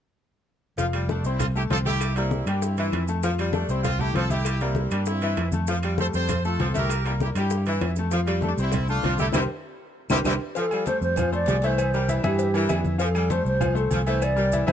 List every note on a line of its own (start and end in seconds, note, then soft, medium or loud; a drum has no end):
0.78 1.21 F1 medium
0.78 0.86 F3 medium
0.78 1.04 F3 medium
0.78 1.04 F4 medium
0.78 1.04 F5 medium
0.78 high bongo medium
0.78 high conga soft
0.78 maracas medium
0.93 1.40 G3 medium
0.93 high bongo soft
0.93 high conga soft
0.93 high timbale medium
0.93 claves medium
0.93 maracas soft
1.09 1.22 A3 medium
1.09 1.24 A3 medium
1.09 1.23 D4 medium
1.09 1.22 A4 medium
1.09 1.23 A5 medium
1.09 high bongo medium
1.09 high conga medium
1.09 maracas soft
1.24 1.67 C2 loud
1.24 1.39 C4 medium
1.24 1.50 C4 medium
1.24 1.40 E4 medium
1.24 1.50 C5 medium
1.24 1.51 C6 medium
1.24 high bongo soft
1.24 high conga soft
1.24 maracas medium
1.39 1.47 C4 medium
1.39 1.46 F4 loud
1.39 high bongo medium
1.39 high conga soft
1.39 low conga medium
1.39 high timbale medium
1.39 claves medium
1.39 maracas medium
1.55 1.68 A3 medium
1.55 1.64 E4 medium
1.55 1.63 G4 medium
1.55 1.68 A4 medium
1.55 1.68 A5 medium
1.55 high conga soft
1.55 maracas soft
1.70 2.41 C2 medium
1.70 1.78 F3 medium
1.70 1.83 C4 medium
1.70 1.79 F4 medium
1.70 1.79 A4 loud
1.70 1.83 C5 medium
1.70 1.83 C6 medium
1.70 high bongo soft
1.70 low bongo loud
1.70 high conga medium
1.70 high timbale medium
1.70 maracas soft
1.85 2.01 A3 medium
1.85 2.11 E4 medium
1.85 2.15 E4 medium
1.85 2.14 G4 loud
1.85 2.12 E5 medium
1.85 2.12 E6 medium
1.85 high bongo soft
1.85 high conga medium
1.85 maracas medium
2.01 high bongo medium
2.01 high conga soft
2.01 high timbale medium
2.01 claves medium
2.01 maracas medium
2.16 2.51 G3 medium
2.16 2.42 A#3 medium
2.16 2.47 C4 medium
2.16 2.47 E4 medium
2.16 2.42 A#4 medium
2.16 2.42 A#5 medium
2.16 high bongo soft
2.16 high conga soft
2.16 high timbale medium
2.16 maracas soft
2.31 high bongo medium
2.31 high conga medium
2.31 maracas soft
2.46 2.89 G2 medium
2.46 2.72 G3 medium
2.46 2.62 A#3 medium
2.46 2.61 D4 medium
2.46 2.72 G4 medium
2.46 2.73 G5 medium
2.46 high bongo soft
2.46 high conga soft
2.46 high timbale loud
2.46 claves medium
2.46 maracas medium
2.62 3.09 C4 medium
2.62 3.09 E4 medium
2.62 high bongo medium
2.62 high conga soft
2.62 maracas loud
2.77 3.02 E3 medium
2.77 3.03 E3 medium
2.77 3.04 E4 medium
2.77 3.04 E5 medium
2.77 high conga soft
2.77 high timbale medium
2.77 maracas soft
2.92 3.63 F2 medium
2.92 high bongo soft
2.92 low bongo medium
2.92 high conga soft
2.92 high timbale loud
2.92 claves medium
2.92 maracas soft
3.08 3.21 A3 medium
3.08 3.21 A4 medium
3.08 3.21 A5 medium
3.08 high bongo soft
3.08 maracas medium
3.23 3.32 F3 medium
3.23 3.49 F3 medium
3.23 3.49 F4 medium
3.23 3.49 F5 medium
3.23 high bongo medium
3.23 high conga soft
3.23 maracas medium
3.38 3.85 G3 medium
3.38 high bongo soft
3.38 high conga soft
3.38 high timbale medium
3.38 claves medium
3.38 maracas soft
3.53 3.68 A3 medium
3.53 3.66 A3 medium
3.53 3.68 D4 medium
3.53 3.67 A4 medium
3.53 3.67 A5 medium
3.53 high bongo medium
3.53 high conga medium
3.53 maracas soft
3.69 4.12 C2 medium
3.69 3.83 C4 medium
3.69 3.95 C4 medium
3.69 3.85 E4 medium
3.69 3.95 C5 medium
3.69 3.95 C6 medium
3.69 high bongo soft
3.69 high conga soft
3.69 maracas medium
3.83 3.99 C4 medium
3.83 3.98 F4 loud
3.83 high bongo medium
3.83 high conga soft
3.83 low conga medium
3.83 high timbale medium
3.83 claves medium
3.83 maracas medium
3.99 4.13 A3 medium
3.99 4.15 E4 medium
3.99 4.15 G4 loud
3.99 4.13 A4 medium
3.99 4.13 A5 medium
3.99 high conga soft
3.99 low conga medium
3.99 maracas soft
4.14 4.86 C2 loud
4.14 4.24 F3 medium
4.14 4.28 C4 medium
4.14 4.31 F4 medium
4.14 4.30 A4 loud
4.14 4.28 C5 medium
4.14 4.28 C6 medium
4.14 high bongo soft
4.14 low bongo medium
4.14 high conga medium
4.14 high timbale medium
4.14 maracas soft
4.29 4.47 A3 medium
4.29 4.61 E4 medium
4.29 4.56 E4 medium
4.29 4.61 G4 loud
4.29 4.56 E5 medium
4.29 4.56 E6 medium
4.29 high bongo soft
4.29 high conga medium
4.29 maracas medium
4.45 high bongo medium
4.45 high conga soft
4.45 high timbale medium
4.45 claves medium
4.45 maracas medium
4.60 4.96 G3 medium
4.60 4.87 A#3 medium
4.60 4.92 C4 medium
4.60 4.92 E4 medium
4.60 4.87 A#4 medium
4.60 4.87 A#5 medium
4.60 high bongo soft
4.60 high conga soft
4.60 high timbale medium
4.60 maracas soft
4.75 high bongo medium
4.75 high conga medium
4.75 maracas soft
4.91 5.34 G2 medium
4.91 5.17 G3 medium
4.91 5.07 A#3 medium
4.91 5.06 D4 medium
4.91 5.17 G4 medium
4.91 5.17 G5 medium
4.91 high bongo soft
4.91 high conga soft
4.91 high timbale medium
4.91 claves medium
4.91 maracas medium
5.06 5.50 C4 medium
5.06 5.50 E4 medium
5.06 high bongo medium
5.06 high conga soft
5.06 maracas medium
5.21 5.46 E3 medium
5.21 5.47 E3 medium
5.21 5.48 E4 medium
5.21 5.48 E5 medium
5.21 high conga soft
5.21 high timbale medium
5.21 maracas soft
5.37 6.08 F2 medium
5.37 high bongo soft
5.37 low bongo medium
5.37 high conga soft
5.37 high timbale loud
5.37 claves medium
5.37 maracas soft
5.52 5.66 A3 medium
5.52 5.66 A4 medium
5.52 5.66 A5 medium
5.52 high bongo soft
5.52 high conga medium
5.52 maracas medium
5.67 5.94 F3 medium
5.67 5.77 F3 medium
5.67 5.94 F4 medium
5.67 5.93 F5 medium
5.67 high bongo medium
5.67 maracas medium
5.83 6.29 G3 medium
5.83 high bongo soft
5.83 high conga soft
5.83 high timbale medium
5.83 claves medium
5.83 maracas soft
5.98 6.11 A3 medium
5.98 6.11 A4 medium
5.98 6.06 A4 medium
5.98 6.06 C5 loud
5.98 6.11 A5 medium
5.98 high bongo medium
5.98 high conga medium
5.98 maracas soft
6.14 6.56 F2 medium
6.14 6.40 C4 medium
6.14 6.43 A4 medium
6.14 6.43 C5 loud
6.14 6.40 C5 medium
6.14 6.40 C6 medium
6.14 high bongo soft
6.14 high conga soft
6.14 maracas medium
6.29 high bongo medium
6.29 high conga soft
6.29 low conga medium
6.29 high timbale medium
6.29 claves medium
6.29 maracas medium
6.44 6.57 A3 medium
6.44 6.73 F4 medium
6.44 6.58 A4 medium
6.44 6.73 A4 loud
6.44 6.57 A5 medium
6.44 high conga soft
6.44 maracas soft
6.59 7.30 C2 medium
6.59 6.68 F3 medium
6.59 6.73 C4 medium
6.59 6.73 C5 medium
6.59 6.73 C6 medium
6.59 high bongo soft
6.59 low bongo medium
6.59 high conga medium
6.59 high timbale medium
6.59 maracas soft
6.74 6.90 A3 medium
6.74 7.00 E4 medium
6.74 7.04 G4 medium
6.74 7.04 A#4 loud
6.74 7.00 E5 medium
6.74 7.00 E6 medium
6.74 high bongo soft
6.74 high conga medium
6.74 maracas medium
6.89 high bongo medium
6.89 high conga soft
6.89 high timbale medium
6.89 claves medium
6.89 maracas medium
7.05 7.40 G3 medium
7.05 7.31 A#3 medium
7.05 7.13 E4 medium
7.05 7.13 G4 medium
7.05 7.31 A#4 medium
7.05 7.31 A#5 medium
7.05 high bongo soft
7.05 high conga soft
7.05 high timbale medium
7.05 maracas soft
7.20 7.30 E4 medium
7.20 7.29 G4 medium
7.20 high bongo medium
7.20 high conga medium
7.20 maracas soft
7.35 7.78 G2 loud
7.35 7.62 G3 medium
7.35 7.65 E4 medium
7.35 7.62 G4 medium
7.35 7.65 G4 medium
7.35 7.62 G5 medium
7.35 high bongo soft
7.35 high conga soft
7.35 high timbale medium
7.35 claves medium
7.35 maracas medium
7.50 high bongo medium
7.50 high conga soft
7.50 maracas medium
7.66 7.91 E3 medium
7.66 7.92 E3 medium
7.66 7.92 E4 medium
7.66 7.93 E5 medium
7.66 high conga soft
7.66 high timbale medium
7.66 maracas soft
7.81 8.52 F2 medium
7.81 high bongo soft
7.81 low bongo medium
7.81 high conga soft
7.81 high timbale medium
7.81 claves medium
7.81 maracas soft
7.96 8.10 A3 medium
7.96 8.11 A4 medium
7.96 8.11 A5 medium
7.96 high bongo soft
7.96 maracas medium
8.11 8.20 F3 medium
8.11 8.38 F3 medium
8.11 8.38 F4 medium
8.11 8.38 F5 medium
8.11 high bongo medium
8.11 high conga soft
8.11 maracas medium
8.27 8.72 G3 medium
8.27 high bongo soft
8.27 high conga soft
8.27 high timbale medium
8.27 claves medium
8.27 maracas soft
8.41 8.55 A3 medium
8.41 8.51 A3 medium
8.41 8.56 A4 medium
8.41 8.56 A5 medium
8.41 high bongo medium
8.41 high conga medium
8.41 maracas soft
8.46 8.52 D4 medium
8.57 9.00 C2 loud
8.57 8.84 C4 medium
8.57 8.88 C4 medium
8.57 8.88 E4 medium
8.57 8.84 C5 medium
8.57 8.84 C6 medium
8.57 high bongo soft
8.57 high conga soft
8.57 maracas medium
8.72 high bongo medium
8.72 high conga soft
8.72 low conga medium
8.72 high timbale medium
8.72 claves medium
8.72 maracas medium
8.88 9.01 A3 medium
8.88 9.17 D4 medium
8.88 9.18 F4 loud
8.88 9.02 A4 medium
8.88 9.02 A5 medium
8.88 high conga soft
8.88 maracas soft
9.03 9.32 C2 medium
9.03 9.13 F3 medium
9.03 9.16 C4 medium
9.03 9.17 C5 medium
9.03 9.17 C6 medium
9.03 high bongo soft
9.03 low bongo medium
9.03 high conga medium
9.03 high timbale medium
9.03 maracas soft
9.18 9.28 A3 medium
9.18 9.32 E4 medium
9.18 9.27 E4 medium
9.18 9.27 G4 medium
9.18 9.32 E5 medium
9.18 9.32 E6 medium
9.18 high bongo soft
9.18 high conga medium
9.18 maracas medium
9.32 9.45 C2 loud
9.32 9.41 C3 loud
9.32 9.41 E3 medium
9.32 9.42 G3 medium
9.32 9.41 C4 loud
9.32 9.41 E4 loud
9.32 9.41 G4 medium
9.32 9.45 G4 loud
9.32 9.45 A#4 medium
9.32 9.45 C5 loud
9.32 low bongo loud
9.32 high conga loud
9.32 high timbale medium
9.32 claves medium
9.32 maracas loud
10.10 10.22 C2 loud
10.10 10.18 C3 loud
10.10 10.18 E3 loud
10.10 10.18 G3 loud
10.10 10.18 C4 loud
10.10 10.18 E4 loud
10.10 10.20 G4 loud
10.10 10.18 G4 loud
10.10 10.20 A#4 loud
10.10 10.20 C5 medium
10.10 low bongo loud
10.10 high conga loud
10.10 high timbale loud
10.10 claves loud
10.10 maracas loud
10.25 10.37 C2 medium
10.25 10.34 C3 loud
10.25 10.34 E3 loud
10.25 10.34 G3 loud
10.25 10.33 C4 loud
10.25 10.34 E4 loud
10.25 10.35 G4 medium
10.25 10.33 G4 loud
10.25 10.36 A#4 medium
10.25 10.35 C5 medium
10.25 low bongo loud
10.25 high conga loud
10.25 high timbale loud
10.25 claves loud
10.25 maracas loud
10.55 10.81 F3 medium
10.55 10.65 F3 medium
10.55 10.81 F4 medium
10.55 10.85 A4 loud
10.55 10.81 F5 medium
10.55 cowbell loud
10.55 high conga soft
10.55 low agogo medium
10.55 maracas medium
10.71 11.18 G3 medium
10.71 high conga soft
10.71 low agogo loud
10.71 claves medium
10.71 maracas soft
10.86 11.12 A3 medium
10.86 11.12 A4 medium
10.86 11.01 C5 loud
10.86 11.12 C5 medium
10.86 cowbell medium
10.86 high conga medium
10.86 maracas medium
11.01 11.44 F2 medium
11.01 11.31 C5 loud
11.01 high conga soft
11.01 maracas soft
11.16 11.30 F3 medium
11.16 11.30 F4 medium
11.16 11.31 F5 medium
11.16 cowbell loud
11.16 high conga soft
11.16 low conga medium
11.16 low agogo loud
11.16 claves medium
11.16 maracas medium
11.32 11.57 A3 medium
11.32 11.58 A4 medium
11.32 11.57 C5 medium
11.32 11.66 D5 loud
11.32 high conga soft
11.32 maracas soft
11.46 12.18 C2 medium
11.46 11.56 F3 medium
11.46 cowbell medium
11.46 high conga medium
11.46 low timbale medium
11.46 low agogo loud
11.46 maracas medium
11.62 11.88 E3 medium
11.62 11.80 A3 medium
11.62 11.89 E4 medium
11.62 12.25 C5 loud
11.62 11.89 E5 loud
11.62 cowbell medium
11.62 low agogo medium
11.62 maracas soft
11.78 cowbell loud
11.78 high conga soft
11.78 low agogo loud
11.78 claves medium
11.78 maracas medium
11.94 12.06 G3 medium
11.94 12.29 G3 medium
11.94 12.06 G4 medium
11.94 12.07 A#4 medium
11.94 high conga soft
11.94 maracas soft
12.09 12.21 E3 medium
12.09 12.21 E4 medium
12.09 12.21 E5 medium
12.09 cowbell medium
12.09 high conga medium
12.09 low agogo medium
12.09 maracas medium
12.24 12.66 G2 loud
12.24 12.49 E3 loud
12.24 12.49 E4 loud
12.24 12.82 G4 loud
12.24 12.49 E5 medium
12.24 high conga loud
12.24 low agogo loud
12.24 claves medium
12.24 maracas soft
12.39 cowbell loud
12.39 high conga soft
12.39 maracas medium
12.54 12.79 E3 medium
12.54 12.67 G3 medium
12.54 12.67 G4 medium
12.54 12.67 A#4 medium
12.54 high conga soft
12.54 low agogo loud
12.54 maracas soft
12.69 13.40 F2 loud
12.69 12.94 E3 medium
12.69 12.94 E4 medium
12.69 12.94 E5 medium
12.69 cowbell medium
12.69 high conga medium
12.69 low timbale medium
12.69 low agogo loud
12.69 claves medium
12.69 maracas medium
12.85 high conga medium
12.85 maracas soft
12.98 13.24 F3 medium
12.98 13.08 F3 medium
12.98 13.24 F4 medium
12.98 13.33 A4 loud
12.98 13.24 F5 medium
12.98 cowbell loud
12.98 high conga soft
12.98 low agogo medium
12.98 maracas medium
13.15 13.60 G3 medium
13.15 high conga soft
13.15 low agogo loud
13.15 claves medium
13.15 maracas soft
13.30 13.55 A3 medium
13.30 13.55 A4 medium
13.30 13.55 C5 medium
13.30 13.46 C5 loud
13.30 cowbell medium
13.30 high conga medium
13.30 maracas medium
13.45 13.88 C2 loud
13.45 13.75 C5 loud
13.45 high conga soft
13.45 maracas soft
13.60 13.73 F3 medium
13.60 13.73 F4 medium
13.60 13.73 F5 medium
13.60 cowbell loud
13.60 high conga soft
13.60 low conga medium
13.60 low agogo loud
13.60 claves medium
13.60 maracas medium
13.75 14.00 A3 medium
13.75 14.00 A4 medium
13.75 14.09 A4 medium
13.75 14.00 C5 medium
13.75 high conga soft
13.75 maracas soft
13.91 14.62 C2 loud
13.91 14.00 F3 medium
13.91 cowbell medium
13.91 high conga medium
13.91 low agogo medium
13.91 maracas medium
14.06 14.32 E3 medium
14.06 14.23 A3 medium
14.06 14.32 E4 medium
14.06 14.24 C5 medium
14.06 14.32 E5 medium
14.06 cowbell medium
14.06 low agogo loud
14.06 maracas soft
14.22 14.67 D5 loud
14.22 cowbell loud
14.22 high conga soft
14.22 low agogo medium
14.22 claves medium
14.22 maracas medium
14.36 14.49 G3 medium
14.36 14.72 G3 medium
14.36 14.49 G4 medium
14.36 14.49 A#4 medium
14.36 high conga soft
14.36 maracas soft
14.52 14.65 E3 medium
14.52 14.65 E4 medium
14.52 14.65 E5 medium
14.52 cowbell medium
14.52 high conga medium
14.52 low agogo medium
14.52 maracas medium
14.66 14.72 G2 loud
14.66 14.72 E3 loud
14.66 14.72 E4 loud
14.66 14.72 C5 medium
14.66 14.72 E5 medium
14.66 high conga loud
14.66 low agogo loud
14.66 claves medium
14.66 maracas soft